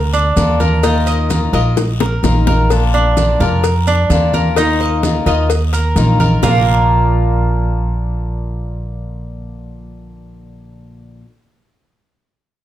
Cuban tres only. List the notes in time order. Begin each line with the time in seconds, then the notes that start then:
Already playing: A#4
0.13 D4
0.60 A#4
0.83 D#4
1.07 D#5
1.53 D#5
2.01 A#4
2.47 A#4
2.94 D4
3.40 A#4
3.87 D4
4.34 A#4
4.57 D#4
4.80 D#5
5.27 D#5
5.73 A#4
6.20 A#4
6.43 A#3 F4 A#4